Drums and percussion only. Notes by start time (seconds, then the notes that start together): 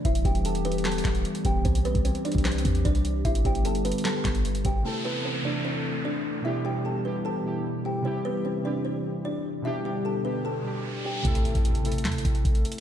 0.05 kick, closed hi-hat
0.15 closed hi-hat
0.25 kick, closed hi-hat
0.35 closed hi-hat
0.45 closed hi-hat
0.55 closed hi-hat
0.65 closed hi-hat, open hi-hat
0.72 closed hi-hat
0.78 closed hi-hat
0.85 snare, clap, closed hi-hat
0.92 closed hi-hat
0.98 closed hi-hat
1.05 kick, snare, clap, closed hi-hat
1.15 closed hi-hat
1.25 closed hi-hat
1.35 closed hi-hat
1.45 kick, closed hi-hat
1.65 kick, closed hi-hat
1.75 closed hi-hat
1.85 closed hi-hat
1.95 kick, closed hi-hat
2.05 closed hi-hat
2.15 closed hi-hat
2.25 closed hi-hat
2.32 kick, closed hi-hat
2.38 closed hi-hat
2.45 snare, clap, closed hi-hat
2.52 closed hi-hat
2.58 closed hi-hat
2.65 kick, closed hi-hat
2.75 closed hi-hat
2.85 kick, closed hi-hat
2.95 closed hi-hat
3.05 closed hi-hat
3.25 kick, closed hi-hat
3.35 closed hi-hat
3.45 kick, closed hi-hat
3.55 closed hi-hat
3.65 closed hi-hat
3.75 closed hi-hat
3.85 closed hi-hat
3.92 closed hi-hat
3.98 closed hi-hat
4.05 snare, clap, closed hi-hat
4.25 kick, snare, clap, closed hi-hat
4.35 closed hi-hat
4.45 closed hi-hat
4.55 closed hi-hat
4.65 kick, closed hi-hat
11.25 kick, closed hi-hat
11.35 closed hi-hat
11.45 closed hi-hat
11.55 kick, closed hi-hat
11.65 closed hi-hat
11.75 closed hi-hat
11.85 closed hi-hat
11.92 closed hi-hat
11.98 closed hi-hat
12.05 snare, clap, closed hi-hat
12.12 closed hi-hat
12.18 closed hi-hat
12.25 kick, closed hi-hat
12.35 closed hi-hat
12.45 kick, closed hi-hat
12.55 closed hi-hat
12.65 closed hi-hat
12.72 closed hi-hat